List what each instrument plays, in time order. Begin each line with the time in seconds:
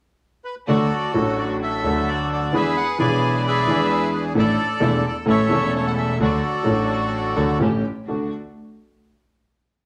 0.44 bandoneon B4
0.67 upright bass D2, grand piano D2 D3 F#3 A3 D4 A4, string section A3 D4 F#4, bandoneon F#4 A4 D5
1.12 upright bass A1, grand piano A1 A2 F#3 A3 D4, string section A3 D4 F#4
1.17 grand piano A4
1.38 bandoneon D5
1.62 bandoneon A4 E5
1.84 upright bass D2, grand piano D2 D3 F#3 A3 D4 A4, string section A3 D4 F#4
2.08 bandoneon D5
2.33 bandoneon D5
2.52 upright bass E2, grand piano E2 E3 B3 D4 G#4, string section G#3 D4 E4, bandoneon G#4 B4
2.56 bandoneon E5
2.77 bandoneon F#5
2.98 upright bass B1, grand piano B1 B2 E3 B3 D4 G#4, string section G#3 D4 E4, bandoneon B4 D5 G#5
3.47 bandoneon G#4 B4 E5
3.66 upright bass E2, grand piano E2 E3 B3 D4, string section G#3 D4 E4
3.71 grand piano G#4
4.15 bandoneon B4
4.35 upright bass A1, grand piano A1 A2 E3 A3 D4 A4, string section A3 D4 E4, bandoneon D5
4.39 bandoneon A4
4.80 grand piano E1 E2 E3 A3 D4 A4, upright bass E1, string section A3 D4 E4
5.07 bandoneon D5
5.26 grand piano A1 A2 E3 A3 C#4 A4, upright bass A1, string section A3 C#4 E4, bandoneon A4 C#5 E5
5.48 grand piano E1 E2 E3 A3 C#4 A4, upright bass E1, string section A3 C#4 E4
5.76 bandoneon C#5
5.87 bandoneon F#5
5.98 bandoneon E5
6.19 upright bass D2, grand piano D2 D3 F#3 A3 D4 A4, string section A3 D4 F#4
6.23 bandoneon F#4 A4 D5
6.63 grand piano A1 A2 F#3 A3 D4 A4, upright bass A1, string section A3 D4 F#4
7.34 upright bass D2, grand piano D2 D3 F#3 A3 D4 A4, string section A3 D4 F#4
7.59 grand piano A1 A2 E3 A3 C#4 G4, upright bass A1, string section A3 C#4 G4
8.06 upright bass D2, grand piano D2 A3 D4 F#4, string section A3 D4 F#4